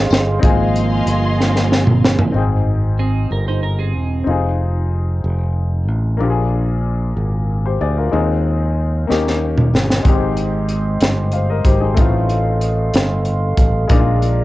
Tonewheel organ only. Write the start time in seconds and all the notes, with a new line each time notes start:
Already playing: G#4 D#5 F5 C6
0.42 F3 A#3 C4
10.04 G#3 D#5 G5 C6
11.99 A4 F5
13.89 G#4 D5 A#5